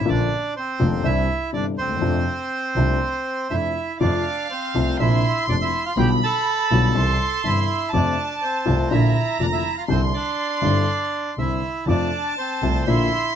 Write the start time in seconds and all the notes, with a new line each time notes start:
0.01 A1
0.05 A#1 A#2 D3 F3 A#3 F4 D5
0.11 D4
0.57 C4 C5
0.80 F1 F2 D3 F3 A#3 F4
1.03 C2 C3 E3 G3 D4 E4 E5
1.52 G1 G2 C3 E3 G3 D4 D5
1.78 D#2 C4 C5
1.83 D2
1.90 D#2
1.96 E2
2.01 F2 C3 F3 A3 D4
2.75 C2 C3 F3 A3 D4
3.50 F2 C3 F3 A3 D4 E4 E5
4.00 F2 C3 F3 A3 D4 F4 D5 F5
4.51 C4 C5
4.75 C2 C3 F3 A3 F4
4.98 A#1 A#2 C3 F3 A#3 D4 E4 E5 C6
5.48 F1 F2 C3 F3 A#3 D4 D5
5.62 E4 E5
5.86 F4 F5
5.96 B1 B2 D3 G3 B3 F4 G4 G5 B5
6.24 A4 A5
6.71 B1 B2 D3 G3 B3 F4
6.95 C2 C3 E3 G3 E4 C6
7.44 G1 G2 C3 E3 G3 E4 E5
7.92 F2 C3 F3 A3 D4 F4 D5 A5
8.42 C4 C5
8.66 C2 C3 F3 A3 F4
8.91 A#1 A#2 D3 F3 A#3 E4 F4 E5 A#5
9.40 F1 F2 D3 F3 A#3 D4 F4 D5
9.53 E4 E5
9.77 F4 F5
9.88 C2 C3 D3 G3 C4 E4 C5 C6
10.14 D4 D5
10.62 G1 G2 D3 G3 C4 E4
11.37 C2 C3 D3 G3 C4 E4 E5
11.86 F2 C3 F3 A3 D4 F4 D5 A5
12.38 C4 C5
12.62 C2 C3 F3 A3 F4
12.87 A#1 A#2 D3 F3 A#3 E4 F4 E5 C6